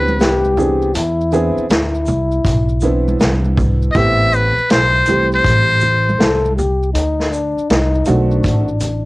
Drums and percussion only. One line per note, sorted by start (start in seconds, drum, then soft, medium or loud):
0.08 high conga medium
0.08 maracas soft
0.19 snare medium
0.19 closed hi-hat medium
0.19 maracas soft
0.44 high conga medium
0.44 maracas soft
0.57 low conga medium
0.57 maracas medium
0.57 shaker soft
0.82 maracas soft
0.94 closed hi-hat medium
0.94 maracas medium
1.21 maracas soft
1.32 maracas soft
1.32 shaker soft
1.58 maracas soft
1.70 snare loud
1.70 closed hi-hat medium
1.70 maracas medium
1.94 maracas soft
2.06 low conga medium
2.06 shaker soft
2.06 maracas soft
2.31 maracas soft
2.45 kick medium
2.45 closed hi-hat medium
2.45 maracas medium
2.69 maracas soft
2.81 low conga soft
2.81 shaker medium
2.81 maracas soft
3.08 high conga medium
3.08 maracas soft
3.20 snare medium
3.20 closed hi-hat medium
3.20 maracas medium
3.44 high conga medium
3.44 maracas soft
3.58 kick medium
3.58 low conga medium
3.58 maracas medium
3.58 shaker soft
3.82 maracas soft
3.94 kick medium
3.94 closed hi-hat medium
3.94 maracas medium
4.21 maracas soft
4.33 maracas soft
4.33 shaker soft
4.58 maracas soft
4.70 snare loud
4.70 closed hi-hat medium
4.70 maracas medium
4.95 maracas soft
5.06 closed hi-hat soft
5.06 low conga medium
5.06 shaker soft
5.06 maracas soft
5.32 maracas soft
5.44 kick medium
5.44 closed hi-hat medium
5.44 maracas medium
5.69 maracas soft
5.80 low conga medium
5.80 shaker medium
5.80 maracas soft
6.09 high conga medium
6.09 maracas soft
6.20 snare medium
6.20 closed hi-hat medium
6.20 maracas medium
6.45 high conga medium
6.45 maracas soft
6.59 low conga medium
6.59 maracas medium
6.59 shaker soft
6.83 maracas soft
6.95 closed hi-hat medium
6.95 maracas medium
7.20 snare soft
7.20 maracas soft
7.32 maracas soft
7.32 shaker medium
7.58 maracas medium
7.70 snare loud
7.70 closed hi-hat medium
7.70 maracas medium
7.95 maracas soft
8.05 closed hi-hat soft
8.05 low conga medium
8.05 shaker soft
8.05 maracas soft
8.31 maracas soft
8.44 kick medium
8.44 closed hi-hat medium
8.44 maracas medium
8.68 maracas soft
8.80 closed hi-hat medium
8.80 low conga medium
8.80 shaker soft
8.80 maracas soft